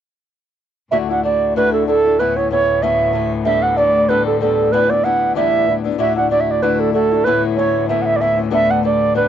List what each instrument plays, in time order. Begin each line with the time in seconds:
0.91 string section D2 A2, steel-string acoustic guitar D3 A3 D4 E4 F#4, flute E5
1.09 steel-string acoustic guitar D4 E4 F#4, flute F#5
1.23 steel-string acoustic guitar A3 D4 E4 F#4, flute D5
1.56 steel-string acoustic guitar D3 A3 D4 E4 F#4, flute B4
1.73 flute A4
1.87 steel-string acoustic guitar A3 D4 E4 F#4, flute A4
2.04 steel-string acoustic guitar D4 E4 F#4
2.19 steel-string acoustic guitar A2 A3 B3 C#4 E4, flute B4
2.36 steel-string acoustic guitar B3 C#4 E4, flute C#5
2.50 steel-string acoustic guitar A3 B3 C#4 E4, flute C#5
2.82 steel-string acoustic guitar A2 A3 B3 C#4 E4, flute E5
3.13 steel-string acoustic guitar A3 B3 C#4 E4
3.45 steel-string acoustic guitar G3 B3 D4 A4, flute E5
3.62 flute F#5
3.77 steel-string acoustic guitar G3 B3 D4 A4, flute D5
4.09 steel-string acoustic guitar G3 B3 D4 A4, flute B4
4.26 flute A4
4.41 steel-string acoustic guitar G3 B3 D4 A4, flute A4
4.72 steel-string acoustic guitar E2 E3 G3 B3 D4 E4, flute B4
4.90 steel-string acoustic guitar G3 B3 D4 E4, flute D5
5.03 steel-string acoustic guitar G3 B3 D4 E4, flute F#5
5.35 steel-string acoustic guitar E2 E3 G3 B3 D4 E4, flute E5
5.67 steel-string acoustic guitar G3 B3 D4 E4
5.84 steel-string acoustic guitar G3 B3 D4 E4
5.98 string section D2 A2, steel-string acoustic guitar D3 A3 D4 E4 F#4, flute E5
6.16 steel-string acoustic guitar D4 E4 F#4, flute F#5
6.30 steel-string acoustic guitar A3 D4 E4 F#4, flute D5
6.40 flute E5
6.51 flute D5
6.62 steel-string acoustic guitar D3 A3 D4 E4 F#4, flute B4
6.80 flute A4
6.93 steel-string acoustic guitar A3 D4 E4 F#4, flute A4
7.11 steel-string acoustic guitar D4 E4 F#4
7.24 steel-string acoustic guitar A2 A3 B3 C#4 E4, flute B4
7.56 steel-string acoustic guitar A3 B3 C#4 E4, flute C#5
7.89 steel-string acoustic guitar A2 A3 B3 C#4 E4, flute E5
8.02 flute E5 F#5
8.16 flute D5
8.20 steel-string acoustic guitar A3 B3 C#4 E4, flute E5
8.36 steel-string acoustic guitar B3 C#4 E4
8.51 steel-string acoustic guitar G3 B3 D4 A4, flute E5
8.70 flute F#5
8.83 steel-string acoustic guitar G3 B3 D4 A4, flute D5
9.15 steel-string acoustic guitar G3 B3 D4 A4, flute B4